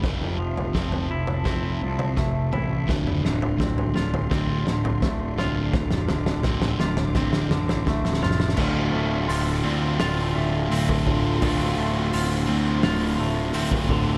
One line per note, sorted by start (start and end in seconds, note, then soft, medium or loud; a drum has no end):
0.02 0.38 F1 medium
0.02 0.37 F2 medium
0.02 1.82 F2 medium
0.02 0.37 C3 medium
0.02 8.53 F3 medium
0.02 0.37 F3 medium
0.02 2.85 E5 medium
0.02 2.85 A5 medium
0.02 kick medium
0.02 snare soft
0.02 floor tom medium
0.21 mid tom medium
0.38 0.74 F1 medium
0.38 0.71 F2 medium
0.38 0.71 C3 medium
0.38 1.82 F3 medium
0.57 floor tom medium
0.73 1.09 F1 medium
0.73 1.08 F2 medium
0.73 1.08 C3 medium
0.73 1.08 F3 medium
0.73 1.46 C4 medium
0.73 kick medium
0.73 snare medium
0.92 floor tom medium
1.09 1.45 F1 medium
1.09 1.42 F2 medium
1.09 1.42 C3 medium
1.09 2.52 E4 medium
1.27 floor tom medium
1.44 1.80 F1 medium
1.44 1.79 F2 medium
1.44 1.79 C3 medium
1.44 1.79 F3 medium
1.44 2.92 C4 medium
1.44 kick loud
1.44 snare medium
1.44 floor tom medium
1.81 2.17 C2 medium
1.81 2.13 F2 medium
1.81 2.13 C3 medium
1.81 3.24 F3 medium
1.99 floor tom medium
2.17 2.52 F1 medium
2.17 2.49 F2 medium
2.17 2.49 C3 medium
2.17 5.02 A3 medium
2.17 kick loud
2.17 snare medium
2.52 2.88 A1 medium
2.52 2.84 F2 medium
2.52 2.84 C3 medium
2.52 2.89 E4 medium
2.52 floor tom medium
2.87 3.23 D1 medium
2.87 3.21 D2 medium
2.87 5.72 D2 medium
2.87 3.21 A2 medium
2.87 3.22 D3 loud
2.87 8.53 D5 medium
2.87 5.70 C6 medium
2.87 kick medium
2.87 snare medium
2.87 floor tom medium
3.07 mid tom medium
3.23 3.58 D1 medium
3.23 3.56 D2 medium
3.23 3.56 A2 medium
3.23 4.67 D3 medium
3.23 snare medium
3.42 floor tom medium
3.58 3.94 D1 medium
3.58 3.91 D2 medium
3.58 3.91 A2 medium
3.58 4.30 C4 medium
3.58 kick medium
3.58 snare medium
3.78 floor tom medium
3.94 4.30 D1 medium
3.94 4.27 D2 medium
3.94 4.27 A2 medium
3.94 5.38 F4 medium
3.94 snare medium
4.14 floor tom medium
4.30 4.66 D1 medium
4.30 4.64 D2 medium
4.30 4.64 A2 medium
4.30 4.64 D3 medium
4.30 6.09 C4 medium
4.30 kick loud
4.30 snare medium
4.30 floor tom medium
4.66 5.01 D1 medium
4.66 4.98 D2 medium
4.66 4.98 A2 medium
4.66 6.07 D3 medium
4.66 snare medium
4.85 floor tom medium
5.02 5.37 D1 medium
5.02 5.34 D2 medium
5.02 5.34 A2 medium
5.02 6.80 A3 medium
5.02 kick loud
5.02 snare medium
5.38 5.72 D1 medium
5.38 5.71 D2 medium
5.38 5.71 A2 medium
5.38 5.72 D3 medium
5.38 6.79 F4 medium
5.38 snare medium
5.38 floor tom medium
5.73 6.08 D1 medium
5.73 7.51 D2 medium
5.73 6.06 D2 medium
5.73 6.06 A2 medium
5.73 8.55 D6 medium
5.73 kick loud
5.73 snare medium
5.73 floor tom medium
5.91 snare medium
5.91 mid tom medium
6.08 6.43 D1 medium
6.08 6.41 D2 medium
6.08 6.41 A2 medium
6.08 7.51 D3 medium
6.08 snare loud
6.08 floor tom medium
6.26 snare medium
6.26 floor tom medium
6.43 6.79 D1 medium
6.43 6.78 D2 medium
6.43 6.78 A2 loud
6.43 6.78 D3 medium
6.43 7.15 C4 medium
6.43 kick loud
6.43 snare medium
6.43 floor tom medium
6.62 snare loud
6.62 floor tom medium
6.79 7.14 D1 medium
6.79 7.12 D2 medium
6.79 7.12 A2 medium
6.79 8.22 F4 medium
6.79 snare loud
6.97 snare loud
6.97 floor tom loud
7.15 7.50 D1 loud
7.15 7.48 D2 medium
7.15 7.49 A2 medium
7.15 7.49 D3 medium
7.15 8.58 C4 medium
7.15 kick loud
7.15 snare loud
7.15 floor tom medium
7.33 snare loud
7.50 7.85 A1 medium
7.50 7.82 D2 medium
7.50 7.83 A2 loud
7.50 8.58 D3 medium
7.50 snare loud
7.50 mid tom medium
7.69 snare loud
7.69 floor tom medium
7.85 8.21 D1 medium
7.85 8.18 D2 medium
7.85 8.18 A2 medium
7.85 8.58 A3 medium
7.85 kick loud
7.85 snare loud
8.05 snare loud
8.13 snare loud
8.21 8.56 F1 medium
8.21 8.53 D2 medium
8.21 8.54 A2 medium
8.21 8.58 F4 medium
8.21 snare loud
8.21 floor tom medium
8.21 mid tom medium
8.31 snare loud
8.40 snare loud
8.49 snare loud
8.57 8.90 D1 medium
8.57 9.65 D2 medium
8.57 10.75 D2 medium
8.57 9.62 A2 medium
8.57 9.64 D3 medium
8.57 9.64 A3 loud
8.57 9.63 C4 loud
8.57 14.18 F4 medium
8.57 9.63 F4 medium
8.57 11.38 D5 medium
8.57 14.18 C6 medium
8.57 kick loud
8.57 crash loud
8.93 9.26 D1 medium
8.93 10.34 A3 medium
9.28 9.61 D1 medium
9.28 10.00 F4 medium
9.28 open hi-hat medium
9.63 9.97 D2 loud
9.63 10.68 D2 medium
9.63 10.68 A2 medium
9.63 10.70 D3 medium
9.63 10.68 A3 medium
9.63 10.68 C4 medium
9.63 10.70 C4 medium
9.63 10.71 F4 medium
10.00 10.32 D1 loud
10.00 12.13 F4 medium
10.00 snare loud
10.00 open hi-hat medium
10.35 10.68 D1 medium
10.35 11.77 A3 medium
10.69 11.03 D1 loud
10.69 11.40 D2 medium
10.69 11.39 A2 medium
10.69 11.41 D3 medium
10.69 11.39 A3 medium
10.69 11.39 C4 medium
10.69 12.47 C4 medium
10.69 11.42 F4 medium
10.69 open hi-hat medium
10.89 kick medium
11.07 11.39 D1 medium
11.07 13.57 D3 medium
11.07 kick medium
11.40 11.74 D1 medium
11.40 12.48 D2 medium
11.40 13.19 D2 medium
11.40 12.45 A2 medium
11.40 12.48 D3 medium
11.40 12.46 A3 medium
11.40 12.46 C4 medium
11.40 12.46 F4 loud
11.40 14.18 C5 medium
11.40 kick loud
11.40 open hi-hat medium
11.78 12.10 D1 medium
11.78 13.18 A3 medium
12.13 12.45 D1 medium
12.13 12.83 F4 medium
12.13 open hi-hat medium
12.46 12.80 D2 loud
12.46 13.51 D2 medium
12.46 13.52 A2 medium
12.46 13.52 D3 medium
12.46 13.51 A3 medium
12.46 13.51 C4 medium
12.46 13.53 C4 medium
12.46 13.54 F4 medium
12.83 13.15 D1 loud
12.83 14.18 F4 medium
12.83 snare loud
12.83 open hi-hat medium
13.19 13.51 D1 medium
13.19 14.18 A3 medium
13.52 13.87 D1 loud
13.52 14.18 D2 medium
13.52 14.18 A2 medium
13.52 14.18 D3 medium
13.52 14.18 A3 medium
13.52 14.18 C4 loud
13.52 14.18 C4 medium
13.52 14.18 F4 medium
13.52 open hi-hat medium
13.72 kick medium
13.89 14.18 D1 medium
13.89 14.18 D3 medium
13.89 kick medium